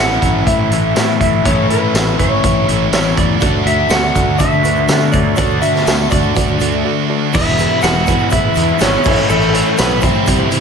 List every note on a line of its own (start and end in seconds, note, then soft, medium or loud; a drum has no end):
0.00 0.19 A1 medium
0.00 1.43 A2 medium
0.00 1.44 A2 medium
0.00 0.94 E3 medium
0.00 1.43 E3 medium
0.00 0.24 A3 medium
0.00 1.45 A3 medium
0.00 0.22 C#4 medium
0.00 1.44 C#4 medium
0.00 0.20 E4 medium
0.00 1.45 E4 medium
0.00 0.43 F#5 medium
0.20 0.44 A1 medium
0.20 0.73 A3 medium
0.20 0.71 C#4 medium
0.20 0.69 E4 medium
0.20 kick medium
0.20 closed hi-hat medium
0.46 0.68 A2 medium
0.46 1.19 E5 loud
0.46 kick medium
0.46 closed hi-hat medium
0.70 0.93 A1 medium
0.70 0.95 A3 medium
0.70 0.95 C#4 medium
0.70 0.96 E4 medium
0.70 closed hi-hat medium
0.94 1.18 A2 medium
0.94 1.44 E3 medium
0.94 1.45 A3 medium
0.94 1.45 C#4 medium
0.94 1.46 E4 medium
0.94 snare loud
0.94 closed hi-hat medium
0.94 tambourine loud
1.20 1.42 A1 medium
1.20 1.46 E5 medium
1.20 kick medium
1.20 closed hi-hat medium
1.44 1.67 A1 medium
1.44 1.92 A2 medium
1.44 1.94 E3 medium
1.44 1.71 A3 medium
1.44 1.69 C#4 medium
1.44 1.67 E4 medium
1.44 1.70 C#5 medium
1.44 kick loud
1.44 closed hi-hat medium
1.68 1.91 A2 medium
1.68 1.95 A3 medium
1.68 1.95 C#4 soft
1.68 1.96 E4 medium
1.68 2.15 B4 medium
1.68 closed hi-hat medium
1.94 2.16 A1 medium
1.94 2.43 A2 medium
1.94 2.44 E3 medium
1.94 2.21 A3 medium
1.94 2.19 C#4 medium
1.94 2.17 E4 loud
1.94 snare loud
1.94 closed hi-hat medium
1.94 tambourine loud
2.18 2.41 A1 medium
2.18 2.71 A3 medium
2.18 2.69 C#4 medium
2.18 2.67 E4 medium
2.18 2.92 C#5 loud
2.18 kick medium
2.18 closed hi-hat medium
2.44 2.66 A1 medium
2.44 kick medium
2.44 closed hi-hat medium
2.68 2.90 A1 medium
2.68 2.93 A3 medium
2.68 2.93 C#4 medium
2.68 2.94 E4 medium
2.68 closed hi-hat medium
2.92 3.14 A1 medium
2.92 3.40 E3 medium
2.92 3.41 A3 medium
2.92 3.41 C#4 medium
2.92 3.42 E4 medium
2.92 3.17 C#5 medium
2.92 snare loud
2.92 closed hi-hat medium
2.92 tambourine loud
3.17 3.39 E2 medium
3.17 3.63 D5 medium
3.17 kick medium
3.17 closed hi-hat medium
3.40 3.64 D2 medium
3.40 3.89 D3 medium
3.40 3.67 A3 medium
3.40 3.66 D4 medium
3.40 3.61 F#4 medium
3.40 3.64 F#4 medium
3.40 3.61 A4 medium
3.40 3.61 D5 medium
3.40 kick loud
3.40 closed hi-hat medium
3.40 shaker medium
3.64 3.88 D2 medium
3.64 3.90 A3 soft
3.64 3.91 D4 medium
3.64 3.92 F#4 medium
3.64 3.86 F#4 medium
3.64 3.86 A4 medium
3.64 3.86 D5 medium
3.64 3.92 E5 medium
3.64 closed hi-hat medium
3.89 4.12 D2 medium
3.89 4.87 D3 loud
3.89 4.16 A3 medium
3.89 4.15 D4 medium
3.89 4.10 F#4 medium
3.89 4.13 F#4 loud
3.89 4.10 A4 medium
3.89 4.10 D5 medium
3.89 4.41 F#5 medium
3.89 snare loud
3.89 closed hi-hat medium
3.89 tambourine loud
3.89 shaker medium
4.03 shaker soft
4.13 4.37 D2 medium
4.13 4.65 A3 medium
4.13 4.63 D4 medium
4.13 4.61 F#4 medium
4.13 4.35 F#4 medium
4.13 4.35 A4 medium
4.13 4.35 D5 medium
4.13 kick medium
4.13 closed hi-hat medium
4.13 shaker medium
4.38 4.62 D3 medium
4.38 4.59 F#4 medium
4.38 4.60 A4 medium
4.38 5.12 E5 medium
4.38 4.60 E5 loud
4.38 kick medium
4.38 closed hi-hat medium
4.38 shaker medium
4.52 shaker soft
4.62 4.85 D2 medium
4.62 4.88 A3 medium
4.62 4.89 D4 medium
4.62 4.90 F#4 medium
4.62 4.84 F#4 medium
4.62 4.84 A4 medium
4.62 4.84 B4 medium
4.62 closed hi-hat medium
4.62 shaker medium
4.76 shaker soft
4.87 5.34 D3 medium
4.87 5.10 D3 medium
4.87 5.36 A3 medium
4.87 5.37 D4 medium
4.87 5.08 F#4 medium
4.87 5.38 F#4 medium
4.87 5.08 A4 medium
4.87 5.08 D5 medium
4.87 snare loud
4.87 closed hi-hat medium
4.87 tambourine loud
4.87 shaker medium
5.01 shaker soft
5.12 5.35 D2 medium
5.12 5.33 F#4 medium
5.12 5.33 A4 medium
5.12 5.33 C#5 medium
5.12 5.36 D5 medium
5.12 kick medium
5.12 closed hi-hat medium
5.12 shaker medium
5.36 5.60 D2 medium
5.36 5.84 D3 medium
5.36 5.62 A3 medium
5.36 5.61 D4 loud
5.36 5.57 F#4 medium
5.36 5.59 F#4 medium
5.36 5.57 A4 medium
5.36 5.57 C#5 loud
5.36 5.63 D5 medium
5.36 kick loud
5.36 closed hi-hat medium
5.36 shaker medium
5.50 shaker soft
5.60 5.84 D3 medium
5.60 5.86 A3 medium
5.60 5.87 D4 medium
5.60 5.88 F#4 medium
5.60 5.81 F#4 medium
5.60 5.82 A4 medium
5.60 5.82 D5 medium
5.60 6.12 E5 medium
5.60 closed hi-hat medium
5.60 shaker medium
5.74 snare soft
5.74 shaker soft
5.86 6.09 D2 medium
5.86 6.35 D3 loud
5.86 6.13 A3 medium
5.86 6.11 D4 loud
5.86 6.07 F#4 medium
5.86 6.09 F#4 loud
5.86 6.07 A4 medium
5.86 6.07 D5 medium
5.86 snare loud
5.86 closed hi-hat medium
5.86 tambourine loud
5.86 shaker medium
5.99 shaker soft
6.10 6.34 D2 medium
6.10 6.62 A3 medium
6.10 6.60 D4 medium
6.10 6.58 F#4 medium
6.10 6.31 F#4 medium
6.10 6.31 A4 medium
6.10 7.05 D5 medium
6.10 6.31 D5 medium
6.10 kick medium
6.10 closed hi-hat medium
6.10 shaker medium
6.23 shaker soft
6.36 6.58 D2 medium
6.36 6.55 F#4 loud
6.36 6.55 A4 medium
6.36 6.55 D5 loud
6.36 kick medium
6.36 closed hi-hat medium
6.36 shaker medium
6.48 shaker soft
6.59 6.83 D2 medium
6.59 6.84 A3 medium
6.59 6.85 D4 medium
6.59 6.86 F#4 medium
6.59 6.80 F#4 medium
6.59 6.80 A4 medium
6.59 6.80 D5 medium
6.59 closed hi-hat medium
6.59 shaker medium
6.71 shaker soft
6.84 7.32 D3 medium
6.84 7.32 A3 medium
6.84 7.33 D4 medium
6.84 7.04 F#4 medium
6.84 7.34 F#4 medium
6.84 7.05 A4 medium
6.84 7.05 D5 loud
7.10 7.29 F#4 medium
7.10 7.29 A4 medium
7.10 7.29 D5 loud
7.32 7.65 E1 loud
7.32 8.07 E2 medium
7.32 8.07 B2 medium
7.32 7.81 E3 medium
7.32 7.82 G#3 medium
7.32 7.83 B3 medium
7.32 9.03 E4 medium
7.32 7.53 E4 medium
7.32 7.79 E4 medium
7.32 7.85 E4 loud
7.32 9.03 G#4 medium
7.32 7.54 G#4 medium
7.32 9.04 B4 medium
7.32 7.54 B4 loud
7.32 7.85 E5 medium
7.32 kick loud
7.32 crash loud
7.32 shaker medium
7.46 snare soft
7.46 shaker soft
7.58 7.83 E3 medium
7.58 7.82 G#3 medium
7.58 7.83 B3 medium
7.58 7.84 E4 medium
7.58 7.79 E4 medium
7.58 7.79 G#4 medium
7.58 7.79 B4 medium
7.58 closed hi-hat medium
7.58 shaker medium
7.69 shaker soft
7.82 8.14 E1 medium
7.82 8.32 E2 medium
7.82 8.32 B2 medium
7.82 8.10 E3 medium
7.82 8.08 G#3 medium
7.82 8.07 B3 medium
7.82 8.03 E4 medium
7.82 8.06 E4 medium
7.82 8.29 F#4 medium
7.82 8.03 G#4 medium
7.82 8.03 B4 medium
7.82 8.31 F#5 loud
7.82 snare loud
7.82 closed hi-hat medium
7.82 tambourine loud
7.82 shaker loud
7.94 shaker soft
8.06 8.31 G#3 medium
8.06 8.33 B3 medium
8.06 8.34 E4 medium
8.06 8.27 E4 medium
8.06 8.27 G#4 medium
8.06 8.27 B4 medium
8.06 kick medium
8.06 closed hi-hat medium
8.06 shaker medium
8.11 8.31 E3 medium
8.18 shaker soft
8.30 8.47 A1 medium
8.30 8.58 E3 medium
8.30 8.56 G#3 medium
8.30 8.55 B3 medium
8.30 8.77 E4 medium
8.30 8.52 E4 medium
8.30 8.52 G#4 medium
8.30 8.52 B4 loud
8.30 8.82 E5 loud
8.30 kick medium
8.30 closed hi-hat medium
8.30 shaker loud
8.35 8.54 E4 medium
8.55 8.72 E2 medium
8.55 8.79 E3 medium
8.55 8.80 G#3 medium
8.55 8.80 B3 medium
8.55 8.82 E4 medium
8.55 8.76 E4 medium
8.55 8.76 G#4 medium
8.55 8.76 B4 medium
8.55 closed hi-hat medium
8.55 shaker medium
8.67 shaker soft
8.79 8.96 G#1 medium
8.79 9.03 E2 medium
8.79 9.03 B2 loud
8.79 9.07 E3 loud
8.79 9.04 G#3 loud
8.79 9.04 B3 loud
8.79 9.26 C#4 medium
8.79 9.00 E4 medium
8.79 9.03 E4 medium
8.79 9.00 G#4 medium
8.79 9.32 C#5 medium
8.79 9.01 D5 medium
8.79 snare loud
8.79 closed hi-hat loud
8.79 tambourine loud
8.79 shaker loud
8.92 shaker soft
9.04 9.21 A1 medium
9.04 9.27 A2 medium
9.04 9.29 E3 medium
9.04 9.29 A3 medium
9.04 9.30 C#4 medium
9.04 9.32 E4 medium
9.04 9.44 E4 medium
9.04 10.26 E4 medium
9.04 9.44 A4 medium
9.04 10.27 A4 medium
9.04 9.44 C#5 medium
9.04 10.27 C#5 medium
9.04 kick loud
9.04 crash loud
9.04 shaker medium
9.17 shaker soft
9.28 9.60 A1 loud
9.28 10.03 A2 medium
9.28 9.78 E3 medium
9.28 9.75 A3 medium
9.28 9.78 A3 loud
9.28 9.79 C#4 medium
9.28 9.81 E4 loud
9.28 9.75 A4 medium
9.28 shaker loud
9.42 shaker soft
9.53 9.78 A3 medium
9.53 9.78 C#4 medium
9.53 9.79 E4 medium
9.53 9.73 E4 medium
9.53 9.73 A4 medium
9.53 9.74 C#5 medium
9.53 closed hi-hat medium
9.65 shaker soft
9.78 10.10 B1 medium
9.78 10.26 A2 medium
9.78 10.27 E3 medium
9.78 10.04 A3 medium
9.78 10.01 B3 medium
9.78 10.02 C#4 medium
9.78 9.98 E4 medium
9.78 10.02 E4 medium
9.78 9.98 A4 medium
9.78 10.01 B4 medium
9.78 9.98 C#5 medium
9.78 snare loud
9.78 closed hi-hat loud
9.78 tambourine loud
9.78 shaker loud
9.90 shaker soft
10.01 10.48 C4 medium
10.01 10.26 C#4 medium
10.01 10.30 E4 medium
10.01 10.22 E4 medium
10.01 10.23 A4 medium
10.01 10.48 C5 medium
10.01 10.23 E5 medium
10.01 kick medium
10.01 closed hi-hat medium
10.01 shaker medium
10.05 10.27 A3 medium
10.14 shaker soft
10.26 10.43 C2 medium
10.26 10.60 C3 medium
10.26 10.60 E3 medium
10.26 10.53 G3 loud
10.26 10.51 C4 loud
10.26 10.47 E4 loud
10.26 10.60 E4 medium
10.26 10.50 E4 loud
10.26 10.60 G4 medium
10.26 10.47 G4 medium
10.26 10.47 C5 loud
10.26 10.60 C5 medium
10.26 kick medium
10.26 closed hi-hat loud
10.26 shaker medium
10.50 10.60 C3 medium
10.50 10.60 G3 medium
10.50 10.60 C4 medium
10.50 10.60 E4 medium
10.50 10.60 G4 medium
10.50 10.60 C5 medium
10.50 closed hi-hat medium
10.50 shaker medium